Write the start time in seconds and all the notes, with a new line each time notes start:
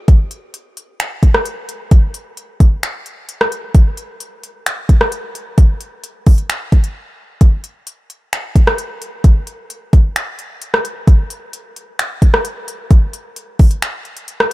0.08 kick, closed hi-hat
0.31 closed hi-hat
0.54 closed hi-hat
0.77 closed hi-hat
1.00 finger snap, closed hi-hat
1.23 kick, closed hi-hat
1.34 cross-stick
1.45 closed hi-hat
1.69 closed hi-hat
1.91 kick, closed hi-hat
2.14 closed hi-hat
2.37 closed hi-hat
2.60 kick, closed hi-hat
2.83 finger snap, closed hi-hat
3.06 closed hi-hat
3.29 closed hi-hat
3.41 cross-stick
3.52 closed hi-hat
3.75 kick, closed hi-hat
3.97 closed hi-hat
4.20 closed hi-hat
4.43 closed hi-hat
4.66 finger snap, closed hi-hat
4.89 kick, closed hi-hat
5.01 cross-stick
5.12 closed hi-hat
5.35 closed hi-hat
5.58 kick, closed hi-hat
5.81 closed hi-hat
6.04 closed hi-hat
6.26 kick, closed hi-hat, open hi-hat
6.38 closed hi-hat
6.50 finger snap, closed hi-hat
6.72 kick, closed hi-hat
6.84 closed hi-hat
7.41 kick, closed hi-hat
7.64 closed hi-hat
7.87 closed hi-hat
8.10 closed hi-hat
8.33 finger snap, closed hi-hat
8.56 kick, closed hi-hat
8.67 cross-stick
8.78 closed hi-hat
9.02 closed hi-hat
9.24 kick, closed hi-hat
9.47 closed hi-hat
9.70 closed hi-hat
9.93 kick, closed hi-hat
10.16 finger snap, closed hi-hat
10.39 closed hi-hat
10.62 closed hi-hat
10.74 cross-stick
10.85 closed hi-hat
11.07 kick, closed hi-hat
11.30 closed hi-hat
11.53 closed hi-hat
11.76 closed hi-hat
11.99 finger snap, closed hi-hat
12.22 kick, closed hi-hat
12.34 cross-stick
12.45 closed hi-hat
12.68 closed hi-hat
12.91 kick, closed hi-hat
13.13 closed hi-hat
13.36 closed hi-hat
13.59 kick, closed hi-hat, open hi-hat
13.71 closed hi-hat
13.82 finger snap, closed hi-hat
14.05 closed hi-hat
14.17 closed hi-hat
14.28 closed hi-hat
14.40 cross-stick